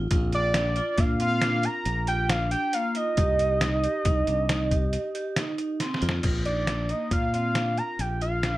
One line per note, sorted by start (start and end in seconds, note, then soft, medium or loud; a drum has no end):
0.11 0.79 A#1 loud
0.11 0.50 F4 medium
0.11 kick loud
0.11 closed hi-hat medium
0.33 1.01 D5 loud
0.33 closed hi-hat medium
0.54 0.75 D4 medium
0.54 snare loud
0.54 closed hi-hat medium
0.76 0.96 F4 medium
0.76 closed hi-hat medium
0.98 1.67 A#2 medium
0.98 1.18 D4 medium
0.98 1.21 F5 medium
0.98 kick loud
0.98 snare soft
0.98 closed hi-hat medium
1.20 1.40 C4 medium
1.20 1.66 F5 loud
1.20 closed hi-hat medium
1.42 1.62 D4 medium
1.42 snare loud
1.42 closed hi-hat medium
1.63 2.03 F4 medium
1.63 2.08 A#5 loud
1.63 closed hi-hat medium
1.85 2.54 A#1 medium
1.85 closed hi-hat medium
2.07 2.28 F4 medium
2.07 2.31 G5 loud
2.07 closed hi-hat medium
2.30 2.50 D4 medium
2.30 2.51 F5 loud
2.30 snare loud
2.30 closed hi-hat medium
2.51 2.72 D4 medium
2.51 2.75 G5 loud
2.51 closed hi-hat medium
2.73 2.94 A#3 medium
2.73 2.97 F5 loud
2.73 closed hi-hat medium
2.95 3.16 F4 medium
2.95 5.80 D#5 medium
2.95 closed hi-hat medium
3.17 3.86 C2 medium
3.17 3.57 G4 medium
3.17 kick loud
3.17 closed hi-hat medium
3.39 closed hi-hat medium
3.61 3.82 D#4 medium
3.61 snare loud
3.61 closed hi-hat medium
3.84 4.03 G4 medium
3.84 closed hi-hat medium
4.05 4.23 C2 medium
4.05 4.25 D#4 medium
4.05 kick loud
4.05 closed hi-hat medium
4.27 4.96 C2 medium
4.27 4.47 D4 medium
4.27 closed hi-hat medium
4.49 4.69 D#4 medium
4.49 snare loud
4.49 closed hi-hat medium
4.71 5.10 G4 medium
4.71 kick medium
4.71 closed hi-hat medium
4.93 closed hi-hat medium
5.15 5.34 G4 medium
5.15 closed hi-hat medium
5.36 5.56 D#4 medium
5.36 snare loud
5.36 closed hi-hat medium
5.58 5.78 D#4 medium
5.58 closed hi-hat medium
5.80 6.00 C4 medium
5.80 snare medium
5.80 closed hi-hat medium
5.94 snare medium
6.02 6.20 F2 medium
6.02 6.22 F4 medium
6.02 closed hi-hat medium
6.09 snare medium
6.23 6.92 A#1 medium
6.23 6.43 F4 medium
6.23 kick loud
6.23 closed hi-hat medium
6.23 crash medium
6.45 6.66 D#4 medium
6.45 6.92 D5 medium
6.45 closed hi-hat soft
6.67 6.87 D4 medium
6.67 snare medium
6.67 closed hi-hat medium
6.89 7.29 A#3 medium
6.89 7.12 D#5 medium
6.89 closed hi-hat medium
7.11 7.80 A#2 medium
7.11 7.33 F5 medium
7.11 kick medium
7.11 closed hi-hat medium
7.33 7.53 C4 medium
7.33 7.79 F5 loud
7.33 closed hi-hat medium
7.55 7.75 D4 medium
7.55 snare medium
7.55 closed hi-hat medium
7.77 8.16 F4 medium
7.77 8.02 A#5 loud
7.77 closed hi-hat soft
7.99 8.58 A#1 medium
7.99 8.21 G5 medium
7.99 closed hi-hat medium
8.21 8.41 F4 medium
8.21 8.58 F5 loud
8.21 closed hi-hat soft
8.43 8.58 D4 medium
8.43 snare medium
8.43 closed hi-hat medium